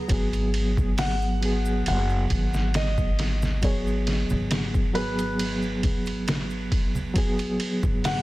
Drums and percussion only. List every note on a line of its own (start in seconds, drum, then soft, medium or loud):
0.09 kick loud
0.09 ride medium
0.09 maracas medium
0.33 ride soft
0.33 maracas soft
0.54 ride medium
0.77 kick loud
0.77 low conga medium
0.77 maracas medium
0.98 snare loud
0.98 open hi-hat medium
0.98 maracas medium
1.22 maracas soft
1.43 ride medium
1.65 maracas medium
1.86 ride medium
1.86 maracas medium
2.10 maracas soft
2.30 kick loud
2.30 ride medium
2.54 snare soft
2.54 maracas medium
2.74 snare loud
2.74 ride medium
2.74 maracas medium
2.98 kick loud
2.98 low conga medium
2.98 maracas soft
3.19 snare medium
3.19 ride medium
3.42 snare soft
3.42 low conga medium
3.42 maracas medium
3.62 kick loud
3.62 ride medium
3.62 maracas medium
3.87 maracas soft
4.07 snare soft
4.07 ride medium
4.30 low conga medium
4.30 maracas medium
4.51 snare loud
4.51 ride medium
4.51 maracas medium
4.74 kick medium
4.74 maracas soft
4.95 ride medium
5.19 ride soft
5.19 maracas medium
5.39 ride medium
5.39 maracas medium
5.62 maracas soft
5.83 kick medium
5.83 ride medium
5.83 low conga medium
6.06 ride soft
6.06 maracas medium
6.27 snare loud
6.27 ride medium
6.27 maracas medium
6.50 maracas soft
6.72 kick loud
6.72 ride medium
6.95 low conga medium
6.95 maracas medium
7.16 kick loud
7.16 ride medium
7.16 maracas medium
7.38 ride soft
7.38 maracas soft
7.60 ride medium
7.83 kick medium
7.83 low conga medium
7.83 maracas medium
8.04 snare loud
8.04 open hi-hat medium
8.04 maracas medium